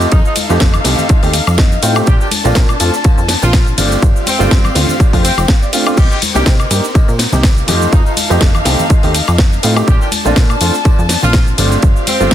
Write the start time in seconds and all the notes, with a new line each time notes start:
Already playing: D#4 F4 A4 C5 D#5 F5
0.01 tambourine, cabasa
0.12 F2 D#4, kick, ride, tambourine, cabasa
0.25 D#4, tambourine, cabasa
0.36 open hi-hat, ride, high conga, cabasa
0.49 F2 A3 C4 D#4 F4 G4 A4 C5 D#5, tambourine, cabasa
0.60 F1, kick, snare, ride, tambourine, cabasa
0.74 tambourine, low conga, cabasa, high woodblock
0.84 C2 A3 C4 D#4 G4, snare, open hi-hat, ride, cabasa
0.98 tambourine, low conga, cabasa
1.09 F4 A4 C5 D#5, kick, ride, tambourine, cabasa
1.23 D#2 A3 C4 D#4 G4, open hi-hat, tambourine, cabasa
1.33 muted clean electric guitar stroke, open hi-hat, ride, cabasa
1.47 F2, muted clean electric guitar stroke, tambourine, cabasa, high woodblock
1.58 D#5, kick, snare, ride, cabasa
1.72 tambourine, cabasa
1.82 A2 A3 C4 D#4 F4 G5, muted clean electric guitar stroke, open hi-hat, ride, cabasa
1.95 A3 C4 D#4 G4, tambourine, cabasa, high woodblock
2.06 A#1 D4 F4 G4 A4 A#4 D5 A5, kick, ride, tambourine, cabasa
2.20 G4, tambourine, cabasa
2.31 open hi-hat, ride, high conga, cabasa
2.44 A#1 A3 C4 D4 F4 A4 A#4 D5, tambourine, cabasa
2.55 A#2, kick, snare, ride, cabasa
2.68 tambourine, cabasa, high woodblock
2.80 F2 A3 C4 D4 F4, open hi-hat, ride, cabasa
2.94 tambourine, cabasa
3.04 F2 F4 A4 A#4 F5, kick, ride, tambourine, cabasa
3.18 F2, tambourine, cabasa
3.28 muted clean electric guitar stroke, snare, open hi-hat, ride, cabasa
3.41 A#1 C4 D4 F4, muted clean electric guitar stroke, tambourine, low conga, cabasa
3.53 kick, snare, ride, tambourine, cabasa
3.67 tambourine, cabasa
3.77 G1 A3 C4 D4 F4 G4 C5 D5 F5, open hi-hat, ride, low conga, cabasa
3.92 tambourine, cabasa
4.02 G1, kick, ride, cabasa
4.16 tambourine, cabasa
4.26 C4, open hi-hat, ride, high conga, cabasa
4.39 G1 A3 C4 D4 F4 G4 C5 D5, tambourine, cabasa
4.51 G2, kick, snare, ride, tambourine, cabasa
4.64 tambourine, low conga, cabasa, high woodblock
4.75 D2 A3 C4 D4 F4, snare, open hi-hat, ride, cabasa
4.88 tambourine, low conga, cabasa
4.99 F4 G4 C5 D5, kick, ride, tambourine, cabasa
5.13 F2 A3 C4 D4 F4, kick, open hi-hat, tambourine, cabasa
5.23 C4 G5, muted clean electric guitar stroke, open hi-hat, ride, cabasa
5.37 F1 C4, muted clean electric guitar stroke, tambourine, cabasa, high woodblock
5.48 F5, kick, snare, ride, cabasa
5.62 D5, tambourine, cabasa
5.72 A3 C4 D4 F4, muted clean electric guitar stroke, open hi-hat, ride, cabasa
5.86 A3 C4 D4 F4, tambourine, cabasa, high woodblock
5.97 C2 C4 G4 A#4 C5 D#5, kick, crash, ride, tambourine, cabasa
6.10 G4, tambourine, cabasa
6.22 open hi-hat, ride, high conga, cabasa
6.34 C2 A#3 D4 D#4 G4 A#4 C5 D#5, tambourine, cabasa
6.46 C3 G4, kick, snare, ride, cabasa
6.60 tambourine, cabasa, high woodblock
6.70 G2 A#3 D4 D#4 G4, open hi-hat, ride, cabasa
6.84 tambourine, cabasa
6.94 A#2 G4 A#4 C5 D#5, kick, ride, tambourine, cabasa
7.08 A#2, tambourine, cabasa
7.19 muted clean electric guitar stroke, snare, open hi-hat, ride, cabasa
7.32 C2 A#3 D#4 G4, muted clean electric guitar stroke, tambourine, low conga, cabasa
7.43 kick, snare, ride, tambourine, cabasa
7.56 tambourine, cabasa
7.67 F2 A3 C4 D#4 F4 G4 A4 C5 D#5 F5, open hi-hat, ride, low conga, cabasa
7.81 tambourine, cabasa
7.93 F2 D#4, kick, ride, cabasa
8.06 D#4, tambourine, cabasa
8.17 open hi-hat, ride, high conga, cabasa
8.29 F2 A3 C4 D#4 F4 G4 A4 C5 D#5, tambourine, cabasa
8.41 F1, kick, snare, ride, cabasa
8.54 tambourine, low conga, cabasa, high woodblock
8.65 C2 A3 C4 D#4 G4, snare, open hi-hat, ride, cabasa
8.79 tambourine, low conga, cabasa
8.89 F4 A4 C5 D#5, kick, ride, tambourine, cabasa
9.03 D#2 A3 C4 D#4 G4, open hi-hat, tambourine, cabasa
9.13 muted clean electric guitar stroke, open hi-hat, ride, cabasa
9.27 F2, muted clean electric guitar stroke, tambourine, cabasa, high woodblock
9.38 kick, snare, ride, tambourine, cabasa
9.52 tambourine, cabasa
9.62 A2 A3 C4 D#4 F4, muted clean electric guitar stroke, open hi-hat, ride, cabasa
9.76 A3 C4 D#4 G4, tambourine, cabasa, high woodblock
9.87 A#1 D4 F4 G4 A4 A#4 D5 A5, kick, ride, tambourine, cabasa
10.01 G4, tambourine, cabasa
10.12 open hi-hat, ride, high conga, cabasa
10.24 A#1 A3 C4 D4 F4 A4 A#4 D5, tambourine, cabasa
10.36 A#2, kick, snare, ride, cabasa
10.50 tambourine, cabasa, high woodblock
10.61 F2 A3 C4 D4 F4, open hi-hat, ride, cabasa
10.74 tambourine, cabasa
10.84 F2 F4 A4 A#4 D5, kick, ride, tambourine, cabasa
10.99 F2, tambourine, cabasa
11.09 muted clean electric guitar stroke, snare, open hi-hat, ride, cabasa
11.23 A#1 C4 D4 F4, muted clean electric guitar stroke, tambourine, low conga, cabasa
11.33 kick, snare, ride, tambourine, cabasa
11.47 tambourine, cabasa
11.58 G1 A3 C4 D4 F4 G4 C5 D5 F5, open hi-hat, ride, low conga, cabasa
11.71 tambourine, cabasa
11.82 G1, kick, ride, tambourine, cabasa
11.96 tambourine, cabasa
12.07 C4, open hi-hat, ride, high conga, cabasa
12.20 G1 A3 C4 D4 F4 G4 C5 D5, tambourine, cabasa
12.31 kick, snare, ride